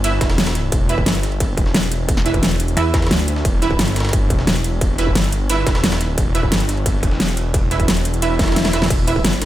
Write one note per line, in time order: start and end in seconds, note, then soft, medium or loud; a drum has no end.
0.00 0.20 G1 loud
0.04 0.87 E4 loud
0.04 0.87 B4 medium
0.04 0.87 E5 loud
0.04 closed hi-hat loud
0.04 ride medium
0.21 0.71 E1 medium
0.21 kick loud
0.21 snare loud
0.21 closed hi-hat medium
0.21 ride medium
0.30 snare loud
0.30 ride medium
0.38 snare loud
0.38 closed hi-hat loud
0.38 ride medium
0.47 snare loud
0.47 closed hi-hat soft
0.47 ride medium
0.55 snare medium
0.55 closed hi-hat medium
0.55 ride medium
0.72 1.05 E1 loud
0.72 kick loud
0.72 closed hi-hat medium
0.72 ride medium
0.89 0.96 E4 medium
0.89 0.96 B4 medium
0.89 0.96 E5 medium
0.89 closed hi-hat medium
0.89 ride medium
0.98 kick medium
1.06 1.56 G1 loud
1.06 snare loud
1.06 closed hi-hat medium
1.06 ride medium
1.15 closed hi-hat soft
1.15 ride soft
1.23 snare soft
1.23 closed hi-hat medium
1.23 ride medium
1.32 ride soft
1.40 kick loud
1.40 closed hi-hat medium
1.40 ride medium
1.57 2.41 E1 medium
1.57 kick loud
1.57 closed hi-hat medium
1.57 ride medium
1.66 snare medium
1.74 snare loud
1.74 closed hi-hat medium
1.74 ride medium
1.83 closed hi-hat soft
1.92 closed hi-hat medium
1.92 ride medium
2.09 kick loud
2.09 closed hi-hat medium
2.09 ride medium
2.17 snare medium
2.26 2.36 E4 medium
2.26 2.36 B4 medium
2.26 2.36 E5 medium
2.26 snare soft
2.26 closed hi-hat medium
2.26 ride medium
2.34 kick medium
2.34 closed hi-hat soft
2.43 2.75 E1 medium
2.43 snare loud
2.43 closed hi-hat medium
2.43 ride medium
2.51 closed hi-hat soft
2.60 closed hi-hat medium
2.60 ride medium
2.68 closed hi-hat soft
2.77 3.09 E2 loud
2.77 3.60 E4 loud
2.77 3.60 B4 medium
2.77 3.60 E5 loud
2.77 closed hi-hat medium
2.77 ride medium
2.94 kick loud
2.94 snare loud
2.94 closed hi-hat medium
2.94 ride medium
3.02 snare medium
3.02 ride medium
3.07 snare medium
3.07 ride medium
3.11 3.44 D2 loud
3.11 snare loud
3.11 closed hi-hat medium
3.11 ride medium
3.19 closed hi-hat soft
3.28 closed hi-hat medium
3.28 ride medium
3.36 snare medium
3.45 3.78 E1 loud
3.45 kick loud
3.45 closed hi-hat medium
3.45 ride medium
3.62 3.68 E4 medium
3.62 3.68 B4 medium
3.62 3.68 E5 medium
3.62 closed hi-hat medium
3.62 ride medium
3.71 kick medium
3.79 4.29 G1 loud
3.79 snare loud
3.79 closed hi-hat medium
3.79 ride medium
3.88 closed hi-hat soft
3.88 ride soft
3.96 snare medium
3.96 closed hi-hat medium
3.96 ride medium
4.00 snare medium
4.00 ride medium
4.05 snare medium
4.05 ride medium
4.09 snare medium
4.09 ride medium
4.13 kick loud
4.13 closed hi-hat medium
4.13 ride medium
4.30 5.14 E1 medium
4.30 kick loud
4.30 closed hi-hat medium
4.30 ride medium
4.39 snare medium
4.47 snare loud
4.47 closed hi-hat medium
4.47 ride medium
4.56 closed hi-hat soft
4.64 closed hi-hat medium
4.64 ride medium
4.81 kick loud
4.81 closed hi-hat medium
4.81 ride medium
4.98 5.08 E4 medium
4.98 5.08 B4 medium
4.98 5.08 E5 medium
4.98 snare soft
4.98 closed hi-hat medium
4.98 ride medium
5.07 kick medium
5.15 5.65 G1 loud
5.15 snare loud
5.15 closed hi-hat medium
5.15 ride medium
5.24 closed hi-hat soft
5.32 closed hi-hat medium
5.32 ride medium
5.50 6.33 E4 loud
5.50 6.33 B4 medium
5.50 6.33 E5 loud
5.50 closed hi-hat loud
5.50 ride medium
5.67 6.16 E1 medium
5.67 kick loud
5.67 snare loud
5.67 closed hi-hat medium
5.67 ride medium
5.75 snare loud
5.75 ride medium
5.84 snare loud
5.84 closed hi-hat medium
5.84 ride medium
5.92 snare loud
5.92 closed hi-hat soft
5.92 ride medium
6.01 snare medium
6.01 closed hi-hat medium
6.01 ride medium
6.18 6.50 E1 loud
6.18 kick loud
6.18 closed hi-hat medium
6.18 ride medium
6.35 6.41 E4 medium
6.35 6.41 B4 medium
6.35 6.41 E5 medium
6.35 closed hi-hat medium
6.35 ride medium
6.43 kick medium
6.52 7.02 G1 loud
6.52 snare loud
6.52 closed hi-hat loud
6.52 ride medium
6.60 closed hi-hat soft
6.60 ride soft
6.69 snare soft
6.69 closed hi-hat medium
6.69 ride medium
6.77 ride soft
6.86 kick loud
6.86 closed hi-hat loud
6.86 ride medium
7.03 7.87 E1 loud
7.03 kick loud
7.03 closed hi-hat medium
7.03 ride medium
7.11 snare medium
7.20 snare loud
7.20 closed hi-hat loud
7.20 ride medium
7.29 closed hi-hat soft
7.37 closed hi-hat medium
7.37 ride medium
7.54 kick loud
7.54 closed hi-hat loud
7.54 ride medium
7.71 7.81 E4 medium
7.71 7.81 B4 medium
7.71 7.81 E5 medium
7.71 snare soft
7.71 closed hi-hat medium
7.71 ride medium
7.80 kick medium
7.80 closed hi-hat soft
7.88 8.72 E1 medium
7.88 snare loud
7.88 closed hi-hat loud
7.88 ride medium
7.97 closed hi-hat soft
8.05 closed hi-hat medium
8.05 ride medium
8.14 closed hi-hat soft
8.22 8.72 E4 loud
8.22 8.72 B4 medium
8.22 8.72 E5 loud
8.22 closed hi-hat loud
8.22 ride medium
8.22 swell medium
8.39 kick loud
8.39 snare loud
8.39 snare medium
8.39 closed hi-hat medium
8.39 ride medium
8.44 snare medium
8.44 ride medium
8.48 snare medium
8.48 ride medium
8.52 snare medium
8.52 ride medium
8.56 snare medium
8.56 snare loud
8.56 closed hi-hat loud
8.56 ride medium
8.65 snare loud
8.65 snare medium
8.65 closed hi-hat soft
8.65 ride medium
8.73 8.89 E1 loud
8.73 8.83 E4 medium
8.73 8.83 B4 medium
8.73 8.83 E5 medium
8.73 snare loud
8.73 closed hi-hat medium
8.73 ride medium
8.82 snare medium
8.82 ride medium
8.86 snare medium
8.86 ride medium
8.90 9.23 E1 loud
8.90 kick loud
8.90 closed hi-hat loud
8.90 ride medium
8.90 crash medium
9.07 9.14 E4 medium
9.07 9.14 B4 medium
9.07 9.14 E5 loud
9.07 closed hi-hat medium
9.07 ride medium
9.16 kick medium
9.25 9.45 G1 loud
9.25 snare loud
9.25 closed hi-hat loud
9.25 ride medium
9.33 closed hi-hat soft
9.33 ride soft
9.42 snare medium
9.42 closed hi-hat medium
9.42 ride medium